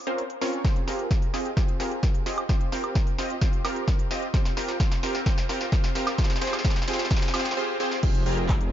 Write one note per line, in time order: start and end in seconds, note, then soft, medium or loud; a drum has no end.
0.07 0.24 C4 medium
0.07 0.24 C#4 medium
0.07 0.24 F4 medium
0.07 0.24 A#4 medium
0.07 0.24 C5 medium
0.07 closed hi-hat soft
0.18 closed hi-hat medium
0.30 closed hi-hat soft
0.41 0.62 C4 medium
0.41 0.62 C#4 medium
0.41 0.62 F4 medium
0.41 0.62 A#4 medium
0.41 0.62 C#5 medium
0.41 snare medium
0.41 open hi-hat medium
0.53 closed hi-hat soft
0.64 0.85 C4 medium
0.64 0.85 F4 medium
0.64 0.85 G4 medium
0.64 0.85 G#4 medium
0.64 0.85 C5 medium
0.64 kick loud
0.64 snare medium
0.64 closed hi-hat medium
0.76 closed hi-hat soft
0.87 1.31 C4 medium
0.87 1.31 F4 medium
0.87 1.31 G4 medium
0.87 1.31 G#4 medium
0.87 1.31 A#4 medium
0.87 snare medium
0.87 open hi-hat loud
0.99 closed hi-hat soft
1.11 kick loud
1.11 snare medium
1.11 closed hi-hat medium
1.22 closed hi-hat soft
1.34 1.50 C4 medium
1.34 1.50 F4 medium
1.34 1.50 G4 medium
1.34 1.50 G#4 medium
1.34 1.50 D#5 medium
1.34 snare medium
1.34 open hi-hat medium
1.45 closed hi-hat soft
1.57 1.77 C4 medium
1.57 1.77 F4 medium
1.57 1.77 G4 medium
1.57 1.77 G#4 medium
1.57 1.77 C5 medium
1.57 kick loud
1.57 snare medium
1.57 closed hi-hat medium
1.68 closed hi-hat soft
1.80 2.23 C4 medium
1.80 2.23 F4 medium
1.80 2.23 G4 medium
1.80 2.23 G#4 medium
1.80 2.23 A#4 medium
1.80 snare medium
1.80 open hi-hat loud
1.92 closed hi-hat soft
2.03 kick loud
2.03 snare medium
2.03 closed hi-hat medium
2.15 closed hi-hat soft
2.26 2.43 C4 medium
2.26 2.43 F4 medium
2.26 2.43 G4 medium
2.26 2.43 G#4 medium
2.26 2.43 D#5 medium
2.26 snare medium
2.26 open hi-hat loud
2.38 closed hi-hat soft
2.38 high woodblock medium
2.49 2.70 C4 medium
2.49 2.70 F4 medium
2.49 2.70 G4 medium
2.49 2.70 C5 medium
2.49 kick loud
2.49 snare medium
2.49 closed hi-hat medium
2.61 closed hi-hat soft
2.72 3.16 C4 medium
2.72 3.16 F4 medium
2.72 3.16 G4 medium
2.72 3.16 A#4 medium
2.72 snare medium
2.72 open hi-hat loud
2.84 closed hi-hat soft
2.84 high woodblock medium
2.95 kick loud
2.95 snare medium
2.95 closed hi-hat medium
3.07 closed hi-hat soft
3.18 3.35 C4 medium
3.18 3.35 F4 medium
3.18 3.35 G4 medium
3.18 3.35 D#5 medium
3.18 snare medium
3.18 open hi-hat medium
3.30 closed hi-hat soft
3.41 3.62 C4 medium
3.41 3.62 F4 medium
3.41 3.62 G4 medium
3.41 3.62 C5 medium
3.41 kick loud
3.41 snare medium
3.41 closed hi-hat medium
3.53 closed hi-hat soft
3.65 4.08 C4 medium
3.65 4.08 F4 medium
3.65 4.08 G4 medium
3.65 4.08 A#4 medium
3.65 snare medium
3.65 open hi-hat loud
3.65 high woodblock medium
3.76 closed hi-hat soft
3.88 kick loud
3.88 snare medium
3.88 closed hi-hat medium
3.99 closed hi-hat soft
4.11 4.27 C4 medium
4.11 4.27 F4 medium
4.11 4.27 G4 medium
4.11 4.27 D#5 medium
4.11 snare medium
4.11 open hi-hat medium
4.22 closed hi-hat soft
4.34 4.54 C4 medium
4.34 4.54 F4 medium
4.34 4.54 G4 medium
4.34 4.54 C5 medium
4.34 kick loud
4.34 snare medium
4.34 closed hi-hat medium
4.45 snare medium
4.45 closed hi-hat soft
4.57 4.78 C4 medium
4.57 4.78 F4 medium
4.57 4.78 G4 medium
4.57 4.78 A#4 medium
4.57 snare medium
4.57 open hi-hat loud
4.68 snare medium
4.68 closed hi-hat soft
4.80 5.00 C4 medium
4.80 5.00 F4 medium
4.80 5.00 G4 medium
4.80 5.00 C5 medium
4.80 kick loud
4.80 snare loud
4.80 closed hi-hat medium
4.92 snare medium
4.92 closed hi-hat soft
5.03 5.24 C4 medium
5.03 5.24 F4 medium
5.03 5.24 G4 medium
5.03 5.24 A#4 medium
5.03 snare loud
5.03 open hi-hat medium
5.15 snare medium
5.15 closed hi-hat soft
5.26 5.46 C4 medium
5.26 5.47 F4 medium
5.26 5.47 G4 medium
5.26 5.47 C5 medium
5.26 kick loud
5.26 snare loud
5.26 closed hi-hat medium
5.38 snare medium
5.38 closed hi-hat soft
5.49 5.70 C4 medium
5.49 5.70 F4 medium
5.49 5.70 G4 medium
5.49 5.70 A#4 medium
5.49 snare medium
5.49 open hi-hat loud
5.61 snare medium
5.61 closed hi-hat soft
5.72 5.93 C4 medium
5.72 5.93 F4 medium
5.72 5.93 G4 medium
5.72 5.93 C5 medium
5.72 kick loud
5.72 snare medium
5.72 closed hi-hat medium
5.84 snare medium
5.84 closed hi-hat soft
5.95 6.17 C4 medium
5.95 6.17 F4 medium
5.95 6.17 G4 medium
5.95 6.17 A#4 medium
5.95 snare loud
5.95 open hi-hat medium
6.07 snare medium
6.07 closed hi-hat soft
6.07 high woodblock medium
6.18 6.39 C4 medium
6.18 6.39 F4 medium
6.18 6.39 G4 medium
6.18 6.39 G#4 medium
6.18 6.39 C5 medium
6.18 kick loud
6.18 snare loud
6.18 closed hi-hat medium
6.24 snare medium
6.30 snare medium
6.30 closed hi-hat soft
6.36 snare medium
6.41 6.62 C4 medium
6.41 6.62 F4 medium
6.41 6.62 G4 medium
6.41 6.62 G#4 medium
6.41 6.62 C5 medium
6.41 snare loud
6.41 open hi-hat loud
6.47 snare medium
6.53 snare medium
6.53 closed hi-hat soft
6.53 high woodblock medium
6.59 snare medium
6.65 6.85 C4 medium
6.65 6.85 G4 medium
6.65 6.85 G#4 medium
6.65 6.85 C5 medium
6.65 kick loud
6.65 snare loud
6.65 closed hi-hat medium
6.70 snare medium
6.76 snare medium
6.76 closed hi-hat soft
6.82 snare medium
6.88 7.08 C4 medium
6.88 7.08 F4 medium
6.88 7.08 G4 medium
6.88 7.08 G#4 medium
6.88 7.08 C5 medium
6.88 snare loud
6.88 open hi-hat medium
6.93 snare loud
6.99 snare loud
6.99 closed hi-hat soft
7.05 snare medium
7.11 7.31 F4 medium
7.11 7.31 G4 medium
7.11 7.31 G#4 medium
7.11 7.31 C5 medium
7.11 kick loud
7.11 snare loud
7.11 closed hi-hat medium
7.16 snare loud
7.22 snare loud
7.22 closed hi-hat soft
7.28 snare loud
7.34 7.54 C4 medium
7.34 7.54 F4 medium
7.34 7.54 G4 medium
7.34 7.54 G#4 medium
7.34 7.54 C5 medium
7.34 snare loud
7.34 open hi-hat loud
7.34 high woodblock medium
7.40 snare medium
7.45 snare loud
7.45 closed hi-hat soft
7.51 snare loud
7.57 7.77 C4 medium
7.57 7.77 F4 medium
7.57 7.77 G4 medium
7.57 7.77 G#4 medium
7.57 7.77 C5 medium
7.80 8.00 C4 medium
7.80 8.00 F4 medium
7.80 8.00 G4 medium
7.80 8.00 G#4 medium
7.80 8.00 C5 medium
7.80 snare medium
7.91 snare medium
8.03 8.24 F1 medium
8.03 8.23 C4 medium
8.03 8.23 F4 medium
8.03 8.23 G4 medium
8.03 8.23 G#4 medium
8.03 8.23 C5 medium
8.03 kick loud
8.03 closed hi-hat medium
8.03 crash loud
8.15 closed hi-hat soft
8.26 8.70 F1 loud
8.26 8.70 C4 medium
8.26 8.70 F4 medium
8.26 8.70 G4 medium
8.26 8.70 G#4 medium
8.26 8.70 A#4 medium
8.26 open hi-hat loud
8.38 closed hi-hat soft
8.49 kick loud
8.49 clap loud
8.49 closed hi-hat medium
8.61 closed hi-hat soft